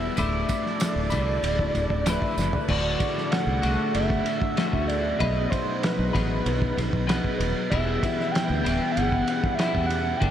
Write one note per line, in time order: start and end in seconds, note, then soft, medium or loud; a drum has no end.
0.00 0.16 E2 medium
0.00 0.16 B2 medium
0.00 0.16 E3 medium
0.00 0.17 G3 medium
0.00 0.13 B3 medium
0.00 0.17 B3 medium
0.00 0.15 E4 medium
0.00 0.17 E4 medium
0.00 0.15 G4 medium
0.00 0.14 B4 medium
0.00 0.19 E5 medium
0.16 0.43 D1 medium
0.16 1.09 D2 medium
0.16 1.10 A2 loud
0.16 1.10 D3 loud
0.16 1.10 A3 loud
0.16 2.67 D4 medium
0.16 2.67 E4 medium
0.16 1.09 E4 loud
0.16 2.67 F#4 medium
0.16 2.67 A4 medium
0.16 2.06 D5 loud
0.16 kick loud
0.16 ride medium
0.16 tambourine medium
0.49 kick medium
0.49 ride medium
0.49 tambourine medium
0.66 snare soft
0.80 snare loud
0.80 ride loud
0.80 tambourine medium
0.96 1.09 D1 medium
1.10 1.38 C2 loud
1.10 2.04 D2 medium
1.10 2.05 A2 medium
1.10 2.04 D3 medium
1.10 2.04 A3 medium
1.10 2.03 E4 medium
1.10 kick medium
1.10 ride medium
1.10 tambourine medium
1.43 1.69 D1 medium
1.43 ride loud
1.43 tambourine soft
1.59 kick medium
1.75 1.87 D1 loud
1.75 kick medium
1.75 ride medium
1.75 tambourine soft
1.90 2.16 D1 medium
1.90 kick medium
2.05 2.66 D2 medium
2.05 2.67 A2 medium
2.05 2.67 D3 medium
2.05 2.68 A3 medium
2.05 2.68 E4 medium
2.05 snare loud
2.05 ride loud
2.05 tambourine loud
2.10 2.37 B4 medium
2.22 kick medium
2.37 2.50 F#1 medium
2.37 2.68 B4 medium
2.37 snare medium
2.37 tambourine medium
2.53 floor tom medium
2.67 2.94 D1 medium
2.67 3.61 D2 loud
2.67 3.61 A2 loud
2.67 3.61 D3 loud
2.67 5.17 A3 medium
2.67 3.62 A3 medium
2.67 5.17 D4 medium
2.67 7.66 F#4 medium
2.67 3.62 F#4 loud
2.67 5.17 A4 medium
2.67 3.33 D5 medium
2.67 kick loud
2.67 crash loud
3.00 kick medium
3.00 ride medium
3.18 snare soft
3.31 3.63 F#5 loud
3.31 snare loud
3.31 ride loud
3.47 3.60 C2 medium
3.62 3.76 C2 medium
3.62 4.56 D2 medium
3.62 4.56 A2 medium
3.62 4.56 D3 medium
3.62 4.55 A3 medium
3.62 4.55 F#4 medium
3.62 3.78 F#5 loud
3.62 ride medium
3.95 4.20 F#1 medium
3.95 4.89 E5 loud
3.95 ride loud
4.10 kick medium
4.26 ride medium
4.42 kick medium
4.57 5.17 D2 medium
4.57 5.18 A2 medium
4.57 5.18 D3 medium
4.57 5.19 A3 medium
4.57 5.19 F#4 loud
4.57 snare loud
4.57 ride loud
4.73 5.12 D2 medium
4.73 kick medium
4.88 5.20 D5 medium
4.88 ride medium
5.18 5.46 B1 medium
5.18 6.11 B2 loud
5.18 6.12 F#3 loud
5.18 6.15 B3 loud
5.18 6.12 D#4 medium
5.18 7.69 D#4 medium
5.18 6.13 F#4 loud
5.18 6.13 B4 loud
5.18 5.52 D#5 medium
5.18 kick loud
5.18 ride loud
5.22 7.69 F#3 loud
5.22 7.69 B5 loud
5.50 5.84 C5 loud
5.50 kick medium
5.50 ride medium
5.83 6.77 B4 medium
5.83 snare loud
5.83 ride loud
5.99 6.11 B1 loud
6.13 6.40 A1 loud
6.13 7.06 B2 medium
6.13 7.06 F#3 medium
6.13 7.07 B3 medium
6.13 7.07 D#4 medium
6.13 7.06 F#4 medium
6.13 7.06 B4 medium
6.13 kick medium
6.13 snare soft
6.13 ride medium
6.46 6.71 B1 medium
6.46 ride loud
6.62 kick medium
6.78 6.90 B1 medium
6.78 kick medium
6.78 snare soft
6.78 ride medium
6.93 7.18 B1 medium
6.93 kick medium
7.07 7.68 B2 loud
7.07 7.69 F#3 loud
7.07 7.69 B3 medium
7.07 7.69 D#4 medium
7.07 7.69 F#4 loud
7.07 7.37 B4 medium
7.07 7.70 B4 medium
7.07 snare loud
7.07 ride loud
7.24 kick medium
7.38 7.52 D#1 loud
7.38 7.68 B4 medium
7.38 ride medium
7.70 7.97 E1 medium
7.70 8.63 E2 loud
7.70 8.63 B2 medium
7.70 8.63 E3 loud
7.70 8.65 G3 loud
7.70 10.19 B3 medium
7.70 8.63 B3 loud
7.70 10.19 E4 medium
7.70 8.63 E4 loud
7.70 10.31 G4 medium
7.70 10.20 B4 loud
7.70 8.33 E5 loud
7.70 kick loud
7.70 ride loud
8.03 kick medium
8.03 ride medium
8.20 snare soft
8.31 8.61 G5 loud
8.31 ride loud
8.36 snare loud
8.50 8.62 D2 loud
8.61 9.57 G3 medium
8.61 9.57 B3 loud
8.61 9.57 E4 medium
8.61 8.91 G5 loud
8.66 8.78 D1 medium
8.66 9.56 E2 medium
8.66 9.57 B2 medium
8.66 9.57 E3 medium
8.66 ride medium
8.92 9.56 F#5 loud
8.97 9.22 G1 medium
8.97 ride loud
9.12 kick medium
9.28 ride medium
9.44 kick loud
9.55 10.19 E2 medium
9.55 10.19 B2 medium
9.55 10.19 E3 medium
9.55 9.86 E5 loud
9.59 10.20 G3 loud
9.59 10.20 B3 medium
9.59 10.20 E4 medium
9.59 snare loud
9.59 ride loud
9.75 10.13 E2 medium
9.75 kick medium
9.86 10.19 F#5 loud
9.86 ride medium
10.17 10.31 G2 loud
10.17 10.31 D3 loud
10.17 10.31 G5 loud
10.21 10.31 G1 loud
10.21 10.31 G3 loud
10.21 10.31 A#3 medium
10.21 10.31 A#3 loud
10.21 10.31 D4 loud
10.21 10.31 D4 medium
10.21 10.31 G4 loud
10.21 10.31 A#4 loud
10.21 kick loud
10.21 ride medium